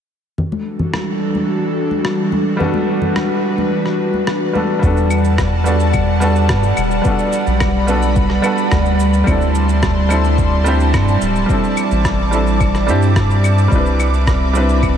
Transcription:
0.38 E3 G3 D4 F#4 A4, low conga
0.52 high conga
0.79 low conga
0.94 cross-stick, high conga
1.35 high conga
1.91 high conga
2.05 cross-stick
2.32 high conga
2.57 G3 B3 D4, low conga
2.61 F#4 A4 B4
2.74 high conga
3.02 low conga
3.16 cross-stick, high conga
3.58 high conga
3.86 cross-stick
4.14 high conga
4.27 cross-stick
4.53 G3 B3 D4 F#4 A4, high conga
4.79 E2 G3 B3 D4, kick, shaker
4.83 G3 F#4 A4 D5 F#5 A5
4.97 shaker
5.10 claves, shaker
5.25 shaker
5.38 kick, cross-stick, shaker
5.64 G3 B3 D4 F#4 A4, shaker
5.80 shaker
5.94 kick, claves, shaker
6.20 G3 B3 D4 F#4 A4, shaker
6.36 shaker
6.49 G2, kick, cross-stick, shaker
6.63 shaker
6.77 E1, claves, shaker
6.91 shaker
7.02 G3 B3 D4 B5, kick, shaker
7.07 F#4 A4
7.19 shaker
7.33 shaker
7.47 B1, shaker
7.60 kick, cross-stick, claves, shaker
7.87 G3 B3 D4 F#4 A4, shaker
8.02 shaker
8.16 kick, shaker
8.30 cross-stick
8.42 G3 B3 D4 F#4 A4, claves, shaker
8.58 shaker
8.72 D2, kick, cross-stick, shaker
8.86 shaker
8.99 A5 C6, shaker
9.14 shaker
9.24 D2 G3 C4 D4, kick, claves, shaker
9.29 E4 A4
9.41 shaker
9.55 shaker
9.69 shaker
9.83 kick, cross-stick, shaker
10.09 G3 C4 D4 E4 A4, claves, shaker
10.25 shaker
10.38 kick, shaker
10.64 G3 C4 D4 E4 G4, shaker
10.80 shaker
10.94 G2, kick, cross-stick, claves, shaker
11.08 shaker
11.22 D1 D6, shaker
11.36 shaker
11.46 G3 C4 D4, kick, shaker
11.51 E4 A4
11.64 shaker
11.77 claves, shaker
11.91 A1, shaker
12.05 kick, cross-stick, shaker
12.31 G3 C4 D4 E4 A4, shaker
12.47 shaker
12.60 kick, claves, shaker
12.75 cross-stick, shaker
12.87 G2 G3 C4 D4 E4 G4, shaker
13.03 shaker
13.16 kick, cross-stick, shaker
13.30 shaker
13.44 claves, shaker
13.58 shaker
13.68 C2 G3 C4 D4, kick, shaker
13.72 C4 E4 B4 E5 B5
13.86 shaker
14.00 claves, shaker
14.14 shaker
14.27 kick, cross-stick, shaker
14.53 G3 C4 D4 E4 B4, shaker
14.69 shaker
14.83 kick, claves, shaker

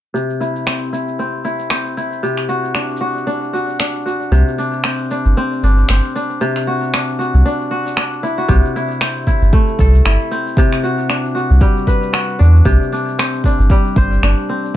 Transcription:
0.14 C3, shaker
0.30 shaker
0.40 E4, shaker
0.56 shaker
0.66 C4, finger snap, shaker
0.82 shaker
0.93 E4, shaker
1.08 shaker
1.19 C4, shaker
1.45 E4, shaker
1.59 shaker
1.70 C4, finger snap, shaker
1.86 shaker
1.97 E4, shaker
2.12 shaker
2.23 C3, shaker
2.37 finger snap, shaker
2.49 F#4, shaker
2.64 shaker
2.75 D4, finger snap, shaker
2.91 shaker
2.97 shaker
3.01 F#4
3.17 shaker
3.27 D4, shaker
3.43 shaker
3.53 F#4, shaker
3.69 shaker
3.80 D4, finger snap, shaker
3.95 shaker
4.06 F#4, shaker
4.22 shaker
4.31 C2 C3, shaker
4.48 shaker
4.58 D4, shaker
4.73 shaker
4.84 C4, finger snap, shaker
4.99 shaker
5.11 D4, shaker
5.25 G1, shaker
5.37 C4, shaker
5.52 shaker
5.63 G1 D4, shaker
5.79 shaker
5.89 G1 C4, finger snap, shaker
6.04 shaker
6.16 D4, shaker
6.30 shaker
6.41 C3, shaker
6.56 finger snap, shaker
6.67 F#4
6.83 shaker
6.94 D4, finger snap, shaker
7.09 shaker
7.19 F#4, shaker
7.34 C2, shaker
7.45 D4, shaker
7.61 shaker
7.71 F#4
7.87 shaker
7.97 D4, finger snap, shaker
8.13 shaker
8.23 E4, shaker
8.38 F#4, shaker
8.48 C2 C3, kick, shaker
8.65 shaker
8.76 E4, shaker
8.91 shaker
9.01 C4, finger snap, shaker
9.17 shaker
9.27 E4, kick, shaker
9.41 G1, shaker
9.53 A3, kick, shaker
9.68 shaker
9.79 C2 A4, kick, shaker
9.95 shaker
10.05 G1 E4, finger snap, shaker
10.21 shaker
10.31 C4, shaker
10.47 shaker
10.57 C3, kick, shaker
10.72 finger snap
10.83 F#4, shaker
11.00 shaker
11.09 D4, finger snap, shaker
11.25 shaker
11.35 F#4, shaker
11.50 C2, shaker
11.61 G3, kick, shaker
11.77 shaker
11.87 B4, kick, shaker
12.03 shaker
12.13 F#4, finger snap, shaker
12.29 shaker
12.39 E2 D4, shaker
12.56 shaker
12.65 C2 C3, kick, shaker
12.83 shaker
12.92 D4, shaker
13.09 shaker
13.19 C4, finger snap, shaker
13.35 shaker
13.44 D4, kick, shaker
13.59 G1, shaker
13.70 G3, kick, shaker
13.87 shaker
13.96 G1 C5, kick, shaker
14.12 shaker
14.22 G1 D4, finger snap, shaker
14.49 C4
14.65 shaker

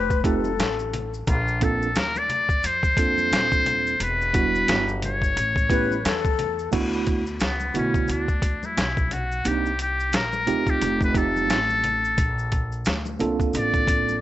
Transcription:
Already playing: F1 G4 B4
0.10 kick, maracas
0.24 A3 C4 D#4 F4 G4 A4, kick, closed hi-hat, maracas
0.44 high conga, maracas
0.59 A1, snare, closed hi-hat, maracas
0.79 maracas
0.93 closed hi-hat, low conga, maracas
1.14 maracas
1.27 A#1 F4, kick, closed hi-hat, maracas
1.48 maracas
1.61 A#3 C4 D4 F4 A4, kick, closed hi-hat, maracas
1.82 maracas
1.95 D2 A#4, snare, closed hi-hat, maracas
2.16 D5, high conga, maracas
2.29 closed hi-hat, low conga, maracas
2.49 kick, maracas
2.63 F2 C5, closed hi-hat, maracas
2.83 kick, maracas
2.97 A#3 C4 D4 F4 A4, kick, closed hi-hat, maracas
3.18 high conga, maracas
3.32 D#1, snare, closed hi-hat, maracas
3.52 kick, maracas
3.66 closed hi-hat, low conga, maracas
3.87 maracas
4.00 E1 B4, closed hi-hat, maracas
4.22 maracas
4.33 G3 B3 D4 E4 F#4, kick, closed hi-hat, maracas
4.55 maracas
4.68 G1, snare, closed hi-hat, maracas
4.89 high conga, maracas
5.02 C#5, closed hi-hat, low conga, maracas
5.22 kick, maracas
5.36 A1, closed hi-hat, maracas
5.56 kick, maracas
5.69 A3 B3 C#4 E4 G4 B4, kick, closed hi-hat, maracas
5.92 high conga, maracas
6.05 E2 A4, snare, closed hi-hat, maracas
6.25 kick, maracas
6.39 closed hi-hat, low conga, maracas
6.59 maracas
6.72 D2 A3 B3 D4 E4 F#4, kick, closed hi-hat, crash, maracas
6.93 maracas
7.07 kick, closed hi-hat, maracas
7.27 maracas
7.40 C#2 B3, snare, closed hi-hat, maracas
7.60 high conga, maracas
7.74 B1 D3 A3 B3 C#4 E4 F#4, closed hi-hat, high conga, low conga, maracas
7.94 kick, maracas
8.08 D2 D4, closed hi-hat, low conga, maracas
8.28 kick, maracas
8.42 kick, closed hi-hat, maracas
8.63 E4, high conga, maracas
8.77 B1, snare, closed hi-hat, maracas
8.97 kick, high conga, maracas
9.11 F#4, closed hi-hat, low conga, maracas
9.32 maracas
9.45 C2 A#3 C4 D4 D#4 G4, closed hi-hat, maracas
9.66 maracas
9.79 G4, closed hi-hat, maracas
10.00 maracas
10.12 A#1 A#4, snare, closed hi-hat, maracas
10.33 high conga, maracas
10.46 D2 A3 C4 D#4 F4 G4, closed hi-hat, high conga, low conga, maracas
10.67 G4, kick, maracas
10.81 F1, closed hi-hat, low conga, maracas
11.01 B4, kick, maracas
11.15 A3 C4 D#4 F4 G4 A4, kick, closed hi-hat, maracas
11.36 high conga, maracas
11.50 A1, snare, closed hi-hat, maracas
11.70 high conga, maracas
11.84 closed hi-hat, low conga, maracas
12.05 maracas
12.18 A#1, kick, closed hi-hat, maracas
12.39 maracas
12.52 kick, closed hi-hat, maracas
12.72 maracas
12.85 D2, snare, closed hi-hat, maracas
13.06 high conga, maracas
13.19 C2 A#3 C4 D4 F4 A4, closed hi-hat, high conga, low conga, maracas
13.40 kick, maracas
13.53 A1 D5, closed hi-hat, low conga, maracas
13.74 kick, maracas
13.88 kick, closed hi-hat, maracas
14.09 high conga, maracas

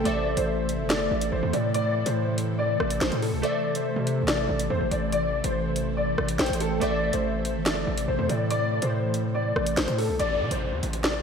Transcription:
Already playing: C3 A3
0.04 A1 E3 A3 A4 C5 D5 E5, closed hi-hat
0.37 A1 C5, closed hi-hat
0.69 closed hi-hat
0.79 G1
0.90 D5, snare, closed hi-hat
1.11 A1
1.21 closed hi-hat
1.32 A1 C5
1.43 E2
1.53 A2 D5, closed hi-hat
1.74 D5, closed hi-hat
2.06 A2 C5, closed hi-hat
2.38 closed hi-hat
2.59 D5
2.80 A1, cross-stick
2.90 closed hi-hat
3.01 A1 C5, snare, closed hi-hat
3.12 A2, closed hi-hat
3.22 A4, open hi-hat
3.33 C2
3.42 E3 A3 A4 C5 D5 E5, closed hi-hat
3.75 C5, closed hi-hat
3.96 C3
4.07 closed hi-hat
4.23 A1
4.28 D5, snare, closed hi-hat
4.49 A1
4.59 closed hi-hat
4.70 E2 C5
4.81 A1
4.91 A1 D5, closed hi-hat
5.12 D5, closed hi-hat
5.44 A1 C5, closed hi-hat
5.76 closed hi-hat
5.97 D5
6.18 A1, cross-stick
6.28 closed hi-hat
6.38 A1 A3 A4 C5 G5, snare, closed hi-hat
6.46 A1, closed hi-hat
6.53 closed hi-hat
6.60 A4, closed hi-hat
6.80 A1 C3 A3 A4 C5 D5 E5, closed hi-hat
7.13 A1 C5, closed hi-hat
7.45 closed hi-hat
7.55 G1
7.66 D5, snare, closed hi-hat
7.87 A1
7.98 closed hi-hat
8.08 A1 C5
8.19 E2
8.29 A2 D5, closed hi-hat
8.51 D5, closed hi-hat
8.82 A2 C5, closed hi-hat
9.14 closed hi-hat
9.35 D5
9.56 A1, cross-stick
9.66 closed hi-hat
9.77 A1 C5, snare, closed hi-hat
9.88 A2, closed hi-hat
9.98 A4, open hi-hat
10.09 C2
10.19 A1 D5, closed hi-hat, downlifter
10.41 C3
10.51 A1 C5, closed hi-hat
10.72 E2
10.83 A1, closed hi-hat
10.93 closed hi-hat
11.04 D5, snare

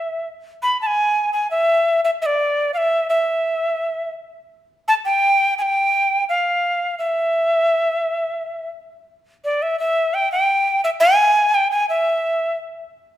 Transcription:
Already playing: E5
0.63 B5
0.82 A5
0.86 G#5
1.33 G#5
1.51 E5
2.04 E5
2.22 E5
2.26 D5
2.74 E5 F5
3.10 E5
4.88 A5
5.05 G5
5.58 G5 G#5
6.29 F5
6.99 E5
9.45 D5
9.62 E5
9.79 E5
10.14 G5
10.32 G5
10.84 E5
11.00 G#5
11.54 G5
11.71 G#5
11.89 E5

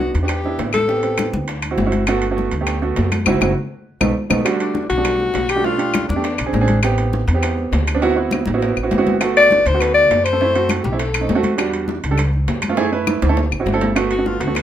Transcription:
Already playing: B3 D4 F#4
0.00 high bongo, low timbale
0.14 E2, high conga, high timbale
0.22 B3 D4 F#4 G4
0.28 G4, high bongo, high conga, high timbale, claves
0.44 B3 D4 E4, high bongo, high conga
0.59 A1, high bongo, low bongo, high conga, high timbale, low timbale
0.73 A4, high bongo, high conga, high timbale, claves
0.88 B3 C4 G4, high bongo, high conga
1.03 B3 C4 G4, high conga, high timbale
1.18 high bongo, high conga, high timbale, low timbale, claves
1.33 D2, high bongo, high conga
1.48 high bongo, high conga, high timbale
1.62 high bongo, high conga, high timbale, claves
1.71 C4 E4 F#4
1.78 G1, high bongo, low bongo, high conga, low timbale
1.86 C4 E4 F#4
1.92 high bongo, high conga, high timbale
2.07 A3 B3 F#4, high bongo, high timbale, claves
2.22 high bongo, high conga, high timbale
2.31 A3 B3 F#4
2.37 high bongo, high conga, low timbale
2.51 D2, high conga, high timbale
2.61 A3 B3 G4
2.67 high bongo, high conga, high timbale, claves
2.82 A3 B3 F#4, high bongo, high conga
2.96 F#2, high bongo, low bongo, high conga, high timbale, low timbale
3.12 high bongo, high conga, high timbale, claves
3.26 F#1 C4 E4 F#4, low bongo, high conga, high timbale, claves
3.41 F#1 C4 E4 F#4, low bongo, high conga, high timbale, claves
4.01 B1 A3 B3 D#4, low bongo, high conga, high timbale, claves
4.30 B1 A3 B3 D#4, low bongo, high conga, high timbale, claves
4.45 G3 A3 D4 F#4, high bongo, high conga, high timbale, claves
4.60 D4, high bongo, high conga, high timbale
4.74 high bongo, high conga, low timbale
4.89 B1 F#4, high conga, high timbale
4.97 G3 A3 D4 F#4
5.05 high bongo, high conga, high timbale, claves
5.20 high bongo, high conga
5.34 B1, high bongo, low bongo, high conga, high timbale, low timbale
5.49 G4, high bongo, high timbale, claves
5.56 G3 A3 D4 F#4
5.64 A3 D4 F4, high bongo, high conga
5.78 A3 D4 G4, high conga, high timbale
5.94 high bongo, high conga, high timbale, low timbale, claves
6.08 E2 D4, high bongo, high conga
6.16 A3 D4 G4
6.24 high bongo, high conga, high timbale
6.38 B1, high bongo, high conga, high timbale, claves
6.46 C4 D4 G#4
6.53 A1, high bongo, low bongo, high conga, low timbale
6.61 C4 D4 G#4
6.68 high bongo, high conga, high timbale
6.83 B3 C4 G4, high bongo, high timbale, claves
6.98 high bongo, high conga, high timbale
7.13 high bongo, high conga, low timbale
7.28 E2, high conga, high timbale
7.34 B3 C4 G4
7.43 high bongo, high conga, high timbale, claves
7.58 high bongo, high conga
7.72 D2, high bongo, low bongo, high conga, high timbale, low timbale
7.87 high bongo, high timbale, claves
7.95 B3 C4 D4
8.02 B3 C4 E4 F#4, high bongo, high conga, high timbale
8.16 B3 C4 E4 F#4, high conga
8.31 high bongo, high conga, low timbale, claves
8.46 A1, high bongo, high conga, low timbale
8.54 B3 C4 E4 F#4
8.61 high bongo, high conga, low timbale
8.76 A1, high bongo, high conga, claves
8.83 B3 C4 E4 F#4
8.91 G1, high bongo, low bongo, high conga, low timbale
8.98 B3 C4 E4 F#4
9.07 high bongo, high conga, low timbale
9.20 A3 B3 F#4, high bongo, high conga, high timbale, claves
9.37 D5, high bongo, high conga, high timbale
9.51 high bongo, high conga, low timbale
9.66 D2 C5, high conga, high timbale
9.74 A3 B3 F#4
9.80 B4, high bongo, high conga, high timbale, claves
9.94 D5, high bongo, high conga
10.10 F#2, high bongo, low bongo, high conga, high timbale, low timbale
10.24 C5, high bongo, high timbale, claves
10.33 A3 B3 A4
10.40 A3 C4 E4, high bongo, high conga
10.55 A3 C4 F#4, high conga, high timbale
10.69 high bongo, high conga, high timbale, low timbale, claves
10.83 B1 G4, high bongo, high conga
10.92 A3 C4 E4
10.98 A4, high bongo, high conga, high timbale
11.14 high bongo, high conga, high timbale, claves
11.21 A3 C4 D#4
11.29 E2, high bongo, low bongo, high conga, low timbale
11.35 A3 C4 F#4
11.43 high bongo, high conga, high timbale
11.58 G3 D4 F#4, high bongo, high conga, high timbale, claves
11.73 high bongo, high conga, high timbale
11.88 high bongo, high conga, low timbale
12.03 C#2, high conga, high timbale
12.11 G3 D4 A4
12.18 high bongo, high conga, high timbale, claves
12.33 high bongo, high conga
12.48 F#2, high bongo, low bongo, high conga, high timbale, low timbale
12.62 high bongo, high conga, high timbale, claves
12.69 A3 B3 F4
12.77 A3 E4 G#4, high bongo, high conga, high timbale
12.92 A3 E4 B4, high conga
13.07 high bongo, high conga, high timbale, claves
13.22 D2, high bongo, high conga, high timbale
13.29 A3 E4 A4
13.37 high bongo, high conga, low timbale
13.51 A1, high bongo, high conga, claves
13.59 C4 E4 F#4
13.66 G1, high bongo, low bongo, high conga, low timbale
13.73 C4 E4 A4
13.81 high bongo, high conga, low timbale
13.96 A3 B3 F#4, high bongo, high timbale, claves
14.11 F#4, high bongo, high conga, high timbale
14.18 A3 B3 F#4
14.26 F4, high bongo, high conga, low timbale
14.40 D2 F#4, high conga, high timbale
14.47 A3 B3 F#4
14.55 high bongo, high conga, high timbale, claves

